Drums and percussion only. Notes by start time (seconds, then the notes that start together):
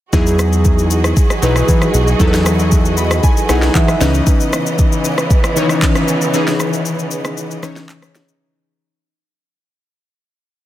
0.13 kick, shaker
0.27 shaker
0.39 cross-stick, shaker
0.53 shaker
0.65 kick, shaker
0.79 shaker
0.91 shaker
1.04 cross-stick, shaker
1.17 kick, shaker
1.30 cross-stick, shaker
1.43 shaker
1.56 cross-stick, shaker
1.68 kick, shaker
1.82 cross-stick, shaker
1.94 shaker
2.08 shaker
2.20 kick, shaker
2.34 snare, shaker
2.46 cross-stick, shaker
2.59 shaker
2.72 kick, shaker
2.85 shaker
2.97 shaker
3.11 cross-stick, shaker
3.23 kick, shaker
3.37 shaker
3.49 cross-stick, shaker
3.62 snare, shaker
3.75 kick, clap, shaker
3.88 cross-stick, shaker
4.01 snare, shaker
4.14 shaker
4.27 kick, shaker
4.40 shaker
4.53 cross-stick, shaker
4.66 shaker
4.79 kick, shaker
4.92 shaker
5.05 shaker
5.18 cross-stick, shaker
5.31 kick, shaker
5.44 cross-stick, shaker
5.57 shaker
5.69 cross-stick, shaker
5.82 kick, clap, shaker
5.95 cross-stick, shaker
6.08 shaker
6.21 shaker
6.34 shaker
6.47 snare, shaker
6.60 cross-stick, shaker
6.73 shaker
6.86 shaker
6.99 shaker
7.11 shaker
7.25 cross-stick, shaker
7.37 shaker
7.51 shaker
7.63 cross-stick, shaker
7.76 snare, shaker
7.89 clap, shaker
8.02 cross-stick, shaker
8.15 snare, shaker
8.29 shaker